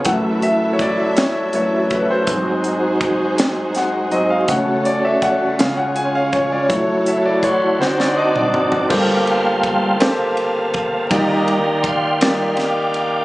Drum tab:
CC |------------|------------|------------|------------|
RD |------------|------------|------------|------------|
HH |x-x-x-x-x-x-|x-x-x-x-x-x-|x-x-x-x-x-x-|x-x-x-------|
SD |------o-----|------o-o---|------o-----|------oo----|
T2 |------------|------------|------------|---------o--|
FT |------------|------------|------------|----------oo|
BD |o---o-----o-|o---o-------|o---o-----o-|o---o-------|

CC |x-----------|------------|
RD |--b-b-b-b-b-|b-b-b-b-b-b-|
HH |------------|------------|
SD |------o-----|------o-o---|
T2 |------------|------------|
FT |------------|------------|
BD |o---o-----o-|o---o-------|